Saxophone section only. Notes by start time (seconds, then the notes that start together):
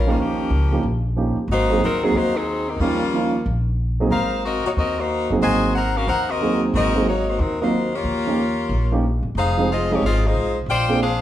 0.10 G3 A#3 C#4 F4
0.20 F3 A#3 C#4 G4
1.52 A#3 D#4 F#4 C5
1.84 F#3 C4 D#4 A#4
2.04 F#3 C4 D#4 G#4
2.16 A#3 D#4 F#4 C5
2.36 F#3 C4 D#4 G#4
2.69 F#3 A#3 C4 D#4
2.80 G3 A#3 C#4 F4
4.12 D#4 A#4 C5 F5
4.46 C4 F#4 A#4 D#5
4.66 A#3 D#4 F#4 C#5
4.78 C4 F#4 A#4 D#5
4.99 A#3 D#4 F#4 C5
5.43 F#4 C5 D#5 G#5
5.76 D#4 A#4 C5 F#5
5.97 C#4 F#4 A#4 F5
6.08 D#4 A#4 C5 F#5
6.30 C4 F#4 A#4 D#5
6.76 C4 F#4 A#4 D#5
7.09 A#3 D#4 F#4 C#5
7.29 A#3 D#4 F#4 C5
7.40 F#3 C4 D#4 A#4
7.61 A#3 D#4 F#4 C5
7.95 A#3 F4 G4 C#5
9.38 D#4 G#4 C5 F5
9.72 C4 F4 G#4 D#5
9.93 A#3 D#4 G4 C#5
10.06 C4 F4 G#4 D#5
10.27 G#3 D#4 F4 C5
10.70 F4 C5 D5 G5
11.02 D4 G#4 C5 F5